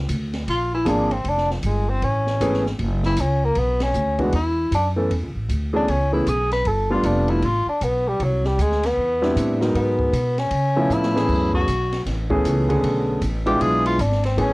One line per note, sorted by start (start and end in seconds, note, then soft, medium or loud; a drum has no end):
0.08 0.46 D2 medium
0.08 kick soft
0.08 hi-hat pedal medium
0.08 ride medium
0.33 snare medium
0.33 ride soft
0.47 0.85 A#1 medium
0.47 0.72 F4 medium
0.47 kick soft
0.47 ride medium
0.75 0.90 E4 medium
0.85 1.24 G#1 medium
0.85 1.08 F3 medium
0.85 1.08 A#3 medium
0.85 1.08 C4 medium
0.85 1.08 D4 medium
0.85 1.14 D4 medium
0.85 1.08 G#4 medium
0.85 kick soft
0.85 hi-hat pedal medium
0.85 ride medium
1.11 1.30 C4 medium
1.11 ride soft
1.24 1.62 F1 medium
1.24 kick soft
1.24 ride medium
1.29 1.51 D4 loud
1.38 snare soft
1.50 1.67 F3 medium
1.50 snare soft
1.63 2.01 G1 medium
1.63 1.91 G#3 medium
1.63 kick soft
1.63 hi-hat pedal medium
1.63 ride medium
1.90 2.06 C4 loud
2.02 2.40 A1 medium
2.02 2.67 C#4 medium
2.02 kick soft
2.02 ride medium
2.27 snare medium
2.41 2.78 G#1 medium
2.41 2.63 E3 medium
2.41 2.63 A3 medium
2.41 2.63 B3 medium
2.41 2.63 C#4 medium
2.41 2.63 G#4 medium
2.41 kick soft
2.41 hi-hat pedal medium
2.41 ride medium
2.53 snare soft
2.66 snare soft
2.79 3.16 F#1 medium
2.79 kick soft
2.79 ride medium
3.03 3.22 E4 medium
3.03 snare medium
3.17 3.55 C#2 medium
3.17 kick soft
3.17 hi-hat pedal medium
3.17 ride medium
3.21 3.47 C#4 medium
3.45 3.60 A#3 medium
3.55 3.93 B1 medium
3.55 3.85 B3 medium
3.55 kick soft
3.55 ride medium
3.80 4.21 C#4 medium
3.80 snare medium
3.80 ride medium
3.94 4.32 D2 medium
3.94 hi-hat pedal medium
4.19 4.32 E3 medium
4.19 4.32 G#3 medium
4.19 4.32 B3 medium
4.19 4.32 D4 medium
4.19 4.32 F#4 medium
4.19 kick medium
4.19 ride soft
4.32 4.71 E2 medium
4.32 4.71 E4 medium
4.32 kick soft
4.32 ride medium
4.71 5.09 F#2 medium
4.71 4.89 D4 medium
4.71 kick soft
4.71 hi-hat pedal medium
4.71 ride medium
4.96 5.09 E3 medium
4.96 5.09 A3 medium
4.96 5.10 B3 medium
4.96 5.10 C#4 medium
4.96 5.10 A4 medium
5.10 5.23 E2 medium
5.10 kick soft
5.10 ride medium
5.23 5.34 C#2 medium
5.35 5.48 A1 medium
5.49 5.87 D2 medium
5.49 kick soft
5.49 hi-hat pedal medium
5.49 ride medium
5.73 5.86 E3 medium
5.73 5.86 A3 medium
5.73 5.86 B3 medium
5.73 5.87 C#4 medium
5.73 5.92 D4 loud
5.73 5.87 G#4 medium
5.88 6.25 C#2 medium
5.88 6.13 C#4 medium
5.88 kick soft
5.88 ride medium
6.12 6.25 E3 medium
6.12 6.26 A3 medium
6.12 6.26 B3 medium
6.12 6.25 C#4 medium
6.12 6.30 E4 medium
6.12 6.26 G#4 medium
6.26 6.64 B1 medium
6.26 6.52 G#4 medium
6.26 kick soft
6.26 hi-hat pedal medium
6.26 ride medium
6.52 6.69 B4 loud
6.52 snare soft
6.52 ride soft
6.65 7.03 G1 medium
6.65 6.91 A4 medium
6.65 kick soft
6.65 ride medium
6.90 7.40 G3 medium
6.90 7.40 A3 medium
6.90 7.40 B3 medium
6.90 7.40 D4 medium
6.90 7.40 F4 medium
6.90 7.07 F4 medium
7.03 7.41 F1 medium
7.03 7.31 D4 medium
7.03 kick soft
7.03 hi-hat pedal medium
7.03 ride medium
7.28 7.47 E4 medium
7.28 ride soft
7.42 7.65 A1 medium
7.42 7.69 F4 medium
7.42 kick soft
7.42 ride medium
7.66 7.85 D4 medium
7.66 muted upright bass stroke soft
7.81 8.19 B1 medium
7.81 8.09 B3 medium
7.81 kick soft
7.81 hi-hat pedal medium
7.81 ride medium
8.08 8.25 G3 medium
8.20 8.57 C2 medium
8.20 8.48 F#3 medium
8.20 kick soft
8.20 ride medium
8.44 8.63 G3 medium
8.44 snare soft
8.58 8.96 D2 medium
8.58 8.87 G#3 medium
8.58 kick soft
8.58 hi-hat pedal medium
8.58 ride medium
8.72 snare soft
8.83 9.37 B3 medium
8.83 snare soft
8.83 ride medium
8.97 9.35 E2 medium
8.97 kick soft
9.22 9.58 G3 medium
9.22 9.58 B3 medium
9.22 9.58 C4 medium
9.22 9.58 D4 medium
9.22 9.58 E4 medium
9.22 snare soft
9.36 9.73 A2 medium
9.36 kick soft
9.36 hi-hat pedal medium
9.36 ride medium
9.61 10.10 F#3 medium
9.61 10.10 G#3 medium
9.61 10.11 B3 medium
9.61 10.10 D#4 medium
9.61 10.11 A#4 medium
9.61 snare medium
9.75 10.12 G#2 medium
9.75 10.41 B3 medium
9.75 kick soft
9.75 ride medium
9.99 kick medium
10.12 10.50 B2 medium
10.12 kick soft
10.12 hi-hat pedal medium
10.12 ride medium
10.38 10.95 C#4 medium
10.38 snare soft
10.38 ride soft
10.51 10.88 C#3 medium
10.51 kick soft
10.51 ride medium
10.76 11.12 F3 medium
10.76 11.12 A3 medium
10.76 11.13 B3 medium
10.76 11.12 C#4 medium
10.76 11.12 E4 medium
10.90 11.27 A2 medium
10.90 11.54 E4 medium
10.90 hi-hat pedal medium
11.03 snare medium
11.15 11.65 E3 medium
11.15 11.65 A3 medium
11.15 11.65 B3 medium
11.15 11.65 C#4 medium
11.15 11.65 G#4 medium
11.15 snare medium
11.28 11.66 F#2 medium
11.28 kick medium
11.28 crash medium
11.53 12.03 F#4 medium
11.53 kick medium
11.67 12.04 B1 medium
11.67 kick soft
11.67 hi-hat pedal medium
11.67 ride medium
11.93 snare soft
11.93 ride soft
12.06 12.43 A1 medium
12.06 kick soft
12.06 snare soft
12.06 ride medium
12.30 12.66 E3 medium
12.30 12.66 A3 medium
12.30 12.66 B3 medium
12.30 12.66 C#4 medium
12.30 12.67 G#4 medium
12.30 kick medium
12.44 12.82 C#2 medium
12.44 kick soft
12.44 hi-hat pedal medium
12.44 ride medium
12.68 13.19 D3 medium
12.68 13.19 A3 medium
12.68 13.19 B3 medium
12.68 13.19 C#4 medium
12.68 13.19 G#4 medium
12.68 ride soft
12.83 13.21 B1 medium
12.83 kick soft
12.83 ride medium
13.21 13.59 A1 medium
13.21 kick soft
13.21 hi-hat pedal medium
13.21 ride medium
13.46 13.96 G#3 medium
13.46 13.96 B3 medium
13.46 13.96 D4 medium
13.46 13.96 E4 medium
13.46 13.96 F4 medium
13.46 13.64 G4 loud
13.46 ride soft
13.60 13.97 B1 medium
13.60 13.86 G#4 loud
13.60 kick soft
13.60 ride medium
13.86 14.02 F4 loud
13.86 ride medium
13.99 14.36 G#1 medium
13.99 14.24 D4 medium
13.99 kick soft
13.99 hi-hat pedal medium
13.99 ride medium
14.12 snare soft
14.24 14.42 C4 medium
14.24 snare soft
14.24 ride medium
14.37 14.53 A1 medium
14.37 14.53 E3 medium
14.37 14.53 A3 medium
14.37 14.53 B3 medium
14.37 14.53 C#4 medium
14.37 14.53 G#4 medium
14.37 kick soft
14.37 ride medium